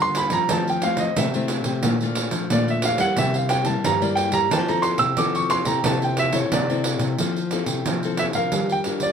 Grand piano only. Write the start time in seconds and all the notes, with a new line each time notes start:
0.02 C6
0.17 B5
0.33 A#5
0.51 A5
0.70 G5
0.83 F5
1.00 D#5
1.18 E5
2.52 D5
2.70 E5
2.85 F5
3.01 F#5
3.18 E5
3.35 F5
3.50 G5
3.66 A5
3.85 A#5
4.02 D5
4.15 G5
4.34 A#5
4.52 A5
4.69 A#5
4.82 C6
4.99 E6
5.18 D6
5.36 C#6
5.51 C6
5.67 A#5
5.85 A5
6.04 G5
6.19 E5
6.35 C#5
6.54 D5
8.19 E5
8.35 F5
8.72 G5
9.03 D5